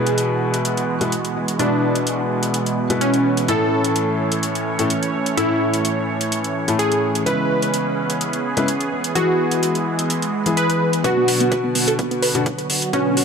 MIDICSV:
0, 0, Header, 1, 6, 480
1, 0, Start_track
1, 0, Tempo, 472441
1, 1621, Time_signature, 4, 2, 24, 8
1, 13457, End_track
2, 0, Start_track
2, 0, Title_t, "Digital synth lead"
2, 0, Program_c, 0, 84
2, 0, Note_on_c, 0, 68, 99
2, 569, Note_off_c, 0, 68, 0
2, 1621, Note_on_c, 0, 62, 95
2, 2250, Note_off_c, 0, 62, 0
2, 3059, Note_on_c, 0, 61, 85
2, 3494, Note_off_c, 0, 61, 0
2, 3541, Note_on_c, 0, 69, 105
2, 4410, Note_off_c, 0, 69, 0
2, 5459, Note_on_c, 0, 64, 98
2, 6089, Note_off_c, 0, 64, 0
2, 6899, Note_on_c, 0, 68, 88
2, 7334, Note_off_c, 0, 68, 0
2, 7378, Note_on_c, 0, 71, 106
2, 8248, Note_off_c, 0, 71, 0
2, 9300, Note_on_c, 0, 66, 98
2, 9929, Note_off_c, 0, 66, 0
2, 10740, Note_on_c, 0, 71, 87
2, 11175, Note_off_c, 0, 71, 0
2, 11222, Note_on_c, 0, 66, 107
2, 12090, Note_off_c, 0, 66, 0
2, 13143, Note_on_c, 0, 61, 97
2, 13457, Note_off_c, 0, 61, 0
2, 13457, End_track
3, 0, Start_track
3, 0, Title_t, "Synth pluck"
3, 0, Program_c, 1, 84
3, 11221, Note_on_c, 1, 71, 94
3, 11290, Note_off_c, 1, 71, 0
3, 11347, Note_on_c, 1, 59, 64
3, 11410, Note_off_c, 1, 59, 0
3, 11462, Note_on_c, 1, 71, 85
3, 11531, Note_off_c, 1, 71, 0
3, 11587, Note_on_c, 1, 59, 62
3, 11650, Note_off_c, 1, 59, 0
3, 11701, Note_on_c, 1, 71, 95
3, 11770, Note_off_c, 1, 71, 0
3, 11827, Note_on_c, 1, 59, 61
3, 11889, Note_off_c, 1, 59, 0
3, 11941, Note_on_c, 1, 59, 66
3, 12010, Note_off_c, 1, 59, 0
3, 12067, Note_on_c, 1, 69, 95
3, 12129, Note_off_c, 1, 69, 0
3, 12181, Note_on_c, 1, 59, 65
3, 12250, Note_off_c, 1, 59, 0
3, 12306, Note_on_c, 1, 59, 62
3, 12369, Note_off_c, 1, 59, 0
3, 12420, Note_on_c, 1, 71, 91
3, 13049, Note_off_c, 1, 71, 0
3, 13140, Note_on_c, 1, 66, 99
3, 13210, Note_off_c, 1, 66, 0
3, 13267, Note_on_c, 1, 59, 65
3, 13330, Note_off_c, 1, 59, 0
3, 13381, Note_on_c, 1, 66, 84
3, 13450, Note_off_c, 1, 66, 0
3, 13457, End_track
4, 0, Start_track
4, 0, Title_t, "Felt piano"
4, 0, Program_c, 2, 0
4, 0, Note_on_c, 2, 47, 91
4, 0, Note_on_c, 2, 56, 81
4, 0, Note_on_c, 2, 59, 83
4, 0, Note_on_c, 2, 64, 82
4, 0, Note_on_c, 2, 66, 83
4, 0, Note_on_c, 2, 71, 101
4, 995, Note_off_c, 2, 56, 0
4, 995, Note_off_c, 2, 64, 0
4, 995, Note_off_c, 2, 71, 0
4, 996, Note_off_c, 2, 47, 0
4, 996, Note_off_c, 2, 59, 0
4, 996, Note_off_c, 2, 66, 0
4, 1025, Note_on_c, 2, 47, 77
4, 1025, Note_on_c, 2, 71, 84
4, 1026, Note_on_c, 2, 56, 71
4, 1026, Note_on_c, 2, 59, 71
4, 1026, Note_on_c, 2, 64, 68
4, 1026, Note_on_c, 2, 66, 70
4, 1110, Note_off_c, 2, 47, 0
4, 1110, Note_off_c, 2, 56, 0
4, 1110, Note_off_c, 2, 59, 0
4, 1110, Note_off_c, 2, 64, 0
4, 1110, Note_off_c, 2, 66, 0
4, 1110, Note_off_c, 2, 71, 0
4, 1619, Note_on_c, 2, 47, 79
4, 1619, Note_on_c, 2, 56, 68
4, 1619, Note_on_c, 2, 59, 69
4, 1619, Note_on_c, 2, 64, 70
4, 1619, Note_on_c, 2, 66, 71
4, 1619, Note_on_c, 2, 71, 85
4, 2915, Note_off_c, 2, 66, 0
4, 2915, Note_off_c, 2, 71, 0
4, 2916, Note_off_c, 2, 47, 0
4, 2916, Note_off_c, 2, 56, 0
4, 2916, Note_off_c, 2, 59, 0
4, 2916, Note_off_c, 2, 64, 0
4, 2946, Note_on_c, 2, 47, 72
4, 2946, Note_on_c, 2, 56, 66
4, 2946, Note_on_c, 2, 59, 67
4, 2946, Note_on_c, 2, 64, 66
4, 2946, Note_on_c, 2, 66, 67
4, 2946, Note_on_c, 2, 71, 80
4, 3513, Note_off_c, 2, 47, 0
4, 3513, Note_off_c, 2, 56, 0
4, 3513, Note_off_c, 2, 59, 0
4, 3513, Note_off_c, 2, 64, 0
4, 3513, Note_off_c, 2, 66, 0
4, 3513, Note_off_c, 2, 71, 0
4, 3540, Note_on_c, 2, 45, 87
4, 3540, Note_on_c, 2, 61, 83
4, 3540, Note_on_c, 2, 64, 82
4, 3540, Note_on_c, 2, 69, 98
4, 4836, Note_off_c, 2, 45, 0
4, 4836, Note_off_c, 2, 61, 0
4, 4836, Note_off_c, 2, 64, 0
4, 4836, Note_off_c, 2, 69, 0
4, 4865, Note_on_c, 2, 64, 70
4, 4865, Note_on_c, 2, 69, 87
4, 4866, Note_on_c, 2, 45, 80
4, 4866, Note_on_c, 2, 61, 69
4, 4950, Note_off_c, 2, 45, 0
4, 4950, Note_off_c, 2, 61, 0
4, 4950, Note_off_c, 2, 64, 0
4, 4950, Note_off_c, 2, 69, 0
4, 5460, Note_on_c, 2, 45, 79
4, 5460, Note_on_c, 2, 61, 71
4, 5460, Note_on_c, 2, 64, 70
4, 5461, Note_on_c, 2, 69, 84
4, 6756, Note_off_c, 2, 45, 0
4, 6756, Note_off_c, 2, 61, 0
4, 6756, Note_off_c, 2, 64, 0
4, 6757, Note_off_c, 2, 69, 0
4, 6786, Note_on_c, 2, 57, 78
4, 6786, Note_on_c, 2, 64, 66
4, 6787, Note_on_c, 2, 45, 72
4, 6787, Note_on_c, 2, 61, 67
4, 7353, Note_off_c, 2, 45, 0
4, 7353, Note_off_c, 2, 57, 0
4, 7353, Note_off_c, 2, 61, 0
4, 7353, Note_off_c, 2, 64, 0
4, 7380, Note_on_c, 2, 49, 91
4, 7380, Note_on_c, 2, 56, 80
4, 7380, Note_on_c, 2, 59, 81
4, 7380, Note_on_c, 2, 61, 85
4, 7380, Note_on_c, 2, 64, 80
4, 7380, Note_on_c, 2, 71, 103
4, 8676, Note_off_c, 2, 49, 0
4, 8676, Note_off_c, 2, 56, 0
4, 8676, Note_off_c, 2, 59, 0
4, 8676, Note_off_c, 2, 61, 0
4, 8676, Note_off_c, 2, 64, 0
4, 8676, Note_off_c, 2, 71, 0
4, 8707, Note_on_c, 2, 49, 78
4, 8707, Note_on_c, 2, 56, 71
4, 8707, Note_on_c, 2, 59, 70
4, 8707, Note_on_c, 2, 61, 72
4, 8707, Note_on_c, 2, 64, 72
4, 8707, Note_on_c, 2, 71, 84
4, 8791, Note_off_c, 2, 49, 0
4, 8791, Note_off_c, 2, 56, 0
4, 8791, Note_off_c, 2, 59, 0
4, 8791, Note_off_c, 2, 61, 0
4, 8791, Note_off_c, 2, 64, 0
4, 8791, Note_off_c, 2, 71, 0
4, 9300, Note_on_c, 2, 52, 77
4, 9300, Note_on_c, 2, 59, 72
4, 9300, Note_on_c, 2, 68, 85
4, 9301, Note_on_c, 2, 64, 70
4, 10596, Note_off_c, 2, 52, 0
4, 10596, Note_off_c, 2, 59, 0
4, 10596, Note_off_c, 2, 64, 0
4, 10596, Note_off_c, 2, 68, 0
4, 10626, Note_on_c, 2, 52, 70
4, 10626, Note_on_c, 2, 59, 66
4, 10626, Note_on_c, 2, 64, 67
4, 10626, Note_on_c, 2, 68, 81
4, 11193, Note_off_c, 2, 52, 0
4, 11193, Note_off_c, 2, 59, 0
4, 11193, Note_off_c, 2, 64, 0
4, 11193, Note_off_c, 2, 68, 0
4, 11219, Note_on_c, 2, 47, 88
4, 11219, Note_on_c, 2, 59, 82
4, 11219, Note_on_c, 2, 62, 82
4, 11219, Note_on_c, 2, 66, 102
4, 12515, Note_off_c, 2, 66, 0
4, 12516, Note_off_c, 2, 47, 0
4, 12516, Note_off_c, 2, 59, 0
4, 12516, Note_off_c, 2, 62, 0
4, 12545, Note_on_c, 2, 59, 71
4, 12546, Note_on_c, 2, 47, 80
4, 12546, Note_on_c, 2, 62, 72
4, 12546, Note_on_c, 2, 66, 87
4, 12630, Note_off_c, 2, 47, 0
4, 12630, Note_off_c, 2, 59, 0
4, 12630, Note_off_c, 2, 62, 0
4, 12630, Note_off_c, 2, 66, 0
4, 13140, Note_on_c, 2, 47, 79
4, 13140, Note_on_c, 2, 50, 74
4, 13140, Note_on_c, 2, 59, 72
4, 13140, Note_on_c, 2, 66, 90
4, 13457, Note_off_c, 2, 47, 0
4, 13457, Note_off_c, 2, 50, 0
4, 13457, Note_off_c, 2, 59, 0
4, 13457, Note_off_c, 2, 66, 0
4, 13457, End_track
5, 0, Start_track
5, 0, Title_t, "Supersaw synth"
5, 0, Program_c, 3, 81
5, 0, Note_on_c, 3, 47, 76
5, 0, Note_on_c, 3, 52, 69
5, 0, Note_on_c, 3, 56, 71
5, 0, Note_on_c, 3, 59, 68
5, 0, Note_on_c, 3, 66, 83
5, 3501, Note_off_c, 3, 59, 0
5, 3501, Note_off_c, 3, 66, 0
5, 3502, Note_off_c, 3, 47, 0
5, 3502, Note_off_c, 3, 56, 0
5, 3541, Note_on_c, 3, 57, 70
5, 3541, Note_on_c, 3, 61, 72
5, 3542, Note_on_c, 3, 73, 84
5, 7342, Note_off_c, 3, 57, 0
5, 7342, Note_off_c, 3, 61, 0
5, 7343, Note_off_c, 3, 73, 0
5, 7382, Note_on_c, 3, 61, 72
5, 7382, Note_on_c, 3, 68, 86
5, 7383, Note_on_c, 3, 59, 71
5, 9260, Note_off_c, 3, 52, 0
5, 9282, Note_off_c, 3, 61, 0
5, 9300, Note_on_c, 3, 52, 76
5, 9301, Note_on_c, 3, 56, 69
5, 11183, Note_off_c, 3, 59, 0
5, 11183, Note_off_c, 3, 68, 0
5, 11201, Note_off_c, 3, 52, 0
5, 11202, Note_off_c, 3, 56, 0
5, 11218, Note_on_c, 3, 50, 80
5, 11218, Note_on_c, 3, 66, 85
5, 11219, Note_on_c, 3, 54, 68
5, 11219, Note_on_c, 3, 59, 73
5, 13457, Note_off_c, 3, 50, 0
5, 13457, Note_off_c, 3, 54, 0
5, 13457, Note_off_c, 3, 59, 0
5, 13457, Note_off_c, 3, 66, 0
5, 13457, End_track
6, 0, Start_track
6, 0, Title_t, "Drums"
6, 66, Note_on_c, 9, 42, 45
6, 168, Note_off_c, 9, 42, 0
6, 180, Note_on_c, 9, 42, 58
6, 282, Note_off_c, 9, 42, 0
6, 546, Note_on_c, 9, 42, 51
6, 647, Note_off_c, 9, 42, 0
6, 660, Note_on_c, 9, 42, 60
6, 762, Note_off_c, 9, 42, 0
6, 786, Note_on_c, 9, 42, 33
6, 888, Note_off_c, 9, 42, 0
6, 1026, Note_on_c, 9, 42, 48
6, 1128, Note_off_c, 9, 42, 0
6, 1140, Note_on_c, 9, 42, 60
6, 1242, Note_off_c, 9, 42, 0
6, 1266, Note_on_c, 9, 42, 33
6, 1368, Note_off_c, 9, 42, 0
6, 1506, Note_on_c, 9, 42, 48
6, 1607, Note_off_c, 9, 42, 0
6, 1620, Note_on_c, 9, 42, 57
6, 1721, Note_off_c, 9, 42, 0
6, 1986, Note_on_c, 9, 42, 45
6, 2087, Note_off_c, 9, 42, 0
6, 2100, Note_on_c, 9, 42, 57
6, 2202, Note_off_c, 9, 42, 0
6, 2466, Note_on_c, 9, 42, 50
6, 2567, Note_off_c, 9, 42, 0
6, 2580, Note_on_c, 9, 42, 58
6, 2682, Note_off_c, 9, 42, 0
6, 2707, Note_on_c, 9, 42, 33
6, 2809, Note_off_c, 9, 42, 0
6, 2947, Note_on_c, 9, 42, 46
6, 3048, Note_off_c, 9, 42, 0
6, 3061, Note_on_c, 9, 42, 58
6, 3162, Note_off_c, 9, 42, 0
6, 3186, Note_on_c, 9, 42, 33
6, 3288, Note_off_c, 9, 42, 0
6, 3427, Note_on_c, 9, 42, 48
6, 3528, Note_off_c, 9, 42, 0
6, 3540, Note_on_c, 9, 42, 58
6, 3642, Note_off_c, 9, 42, 0
6, 3906, Note_on_c, 9, 42, 45
6, 4008, Note_off_c, 9, 42, 0
6, 4020, Note_on_c, 9, 42, 58
6, 4122, Note_off_c, 9, 42, 0
6, 4386, Note_on_c, 9, 42, 50
6, 4487, Note_off_c, 9, 42, 0
6, 4500, Note_on_c, 9, 42, 56
6, 4601, Note_off_c, 9, 42, 0
6, 4626, Note_on_c, 9, 42, 32
6, 4728, Note_off_c, 9, 42, 0
6, 4866, Note_on_c, 9, 42, 49
6, 4968, Note_off_c, 9, 42, 0
6, 4980, Note_on_c, 9, 42, 60
6, 5082, Note_off_c, 9, 42, 0
6, 5107, Note_on_c, 9, 42, 33
6, 5208, Note_off_c, 9, 42, 0
6, 5347, Note_on_c, 9, 42, 46
6, 5448, Note_off_c, 9, 42, 0
6, 5461, Note_on_c, 9, 42, 60
6, 5563, Note_off_c, 9, 42, 0
6, 5827, Note_on_c, 9, 42, 48
6, 5929, Note_off_c, 9, 42, 0
6, 5941, Note_on_c, 9, 42, 59
6, 6043, Note_off_c, 9, 42, 0
6, 6307, Note_on_c, 9, 42, 51
6, 6409, Note_off_c, 9, 42, 0
6, 6421, Note_on_c, 9, 42, 59
6, 6523, Note_off_c, 9, 42, 0
6, 6547, Note_on_c, 9, 42, 33
6, 6649, Note_off_c, 9, 42, 0
6, 6787, Note_on_c, 9, 42, 48
6, 6889, Note_off_c, 9, 42, 0
6, 6901, Note_on_c, 9, 42, 59
6, 7003, Note_off_c, 9, 42, 0
6, 7027, Note_on_c, 9, 42, 35
6, 7129, Note_off_c, 9, 42, 0
6, 7267, Note_on_c, 9, 42, 48
6, 7369, Note_off_c, 9, 42, 0
6, 7381, Note_on_c, 9, 42, 66
6, 7482, Note_off_c, 9, 42, 0
6, 7746, Note_on_c, 9, 42, 50
6, 7848, Note_off_c, 9, 42, 0
6, 7860, Note_on_c, 9, 42, 63
6, 7962, Note_off_c, 9, 42, 0
6, 8227, Note_on_c, 9, 42, 51
6, 8328, Note_off_c, 9, 42, 0
6, 8341, Note_on_c, 9, 42, 61
6, 8442, Note_off_c, 9, 42, 0
6, 8466, Note_on_c, 9, 42, 35
6, 8568, Note_off_c, 9, 42, 0
6, 8706, Note_on_c, 9, 42, 51
6, 8808, Note_off_c, 9, 42, 0
6, 8821, Note_on_c, 9, 42, 62
6, 8922, Note_off_c, 9, 42, 0
6, 8946, Note_on_c, 9, 42, 34
6, 9048, Note_off_c, 9, 42, 0
6, 9187, Note_on_c, 9, 42, 52
6, 9288, Note_off_c, 9, 42, 0
6, 9301, Note_on_c, 9, 42, 64
6, 9403, Note_off_c, 9, 42, 0
6, 9667, Note_on_c, 9, 42, 51
6, 9768, Note_off_c, 9, 42, 0
6, 9782, Note_on_c, 9, 42, 67
6, 9883, Note_off_c, 9, 42, 0
6, 9908, Note_on_c, 9, 42, 34
6, 10009, Note_off_c, 9, 42, 0
6, 10148, Note_on_c, 9, 42, 55
6, 10249, Note_off_c, 9, 42, 0
6, 10262, Note_on_c, 9, 42, 64
6, 10363, Note_off_c, 9, 42, 0
6, 10388, Note_on_c, 9, 42, 37
6, 10489, Note_off_c, 9, 42, 0
6, 10627, Note_on_c, 9, 42, 51
6, 10729, Note_off_c, 9, 42, 0
6, 10740, Note_on_c, 9, 42, 64
6, 10842, Note_off_c, 9, 42, 0
6, 10867, Note_on_c, 9, 42, 37
6, 10969, Note_off_c, 9, 42, 0
6, 11107, Note_on_c, 9, 42, 52
6, 11208, Note_off_c, 9, 42, 0
6, 11220, Note_on_c, 9, 36, 114
6, 11221, Note_on_c, 9, 42, 65
6, 11322, Note_off_c, 9, 36, 0
6, 11323, Note_off_c, 9, 42, 0
6, 11461, Note_on_c, 9, 46, 99
6, 11562, Note_off_c, 9, 46, 0
6, 11586, Note_on_c, 9, 42, 50
6, 11688, Note_off_c, 9, 42, 0
6, 11700, Note_on_c, 9, 36, 113
6, 11701, Note_on_c, 9, 42, 66
6, 11802, Note_off_c, 9, 36, 0
6, 11802, Note_off_c, 9, 42, 0
6, 11940, Note_on_c, 9, 46, 102
6, 12042, Note_off_c, 9, 46, 0
6, 12067, Note_on_c, 9, 42, 57
6, 12169, Note_off_c, 9, 42, 0
6, 12180, Note_on_c, 9, 36, 114
6, 12180, Note_on_c, 9, 42, 63
6, 12282, Note_off_c, 9, 36, 0
6, 12282, Note_off_c, 9, 42, 0
6, 12307, Note_on_c, 9, 42, 36
6, 12408, Note_off_c, 9, 42, 0
6, 12420, Note_on_c, 9, 46, 96
6, 12522, Note_off_c, 9, 46, 0
6, 12547, Note_on_c, 9, 42, 52
6, 12648, Note_off_c, 9, 42, 0
6, 12660, Note_on_c, 9, 36, 110
6, 12660, Note_on_c, 9, 42, 65
6, 12761, Note_off_c, 9, 36, 0
6, 12762, Note_off_c, 9, 42, 0
6, 12787, Note_on_c, 9, 42, 38
6, 12888, Note_off_c, 9, 42, 0
6, 12900, Note_on_c, 9, 46, 97
6, 13002, Note_off_c, 9, 46, 0
6, 13027, Note_on_c, 9, 42, 52
6, 13128, Note_off_c, 9, 42, 0
6, 13140, Note_on_c, 9, 36, 115
6, 13141, Note_on_c, 9, 42, 62
6, 13241, Note_off_c, 9, 36, 0
6, 13242, Note_off_c, 9, 42, 0
6, 13380, Note_on_c, 9, 46, 108
6, 13457, Note_off_c, 9, 46, 0
6, 13457, End_track
0, 0, End_of_file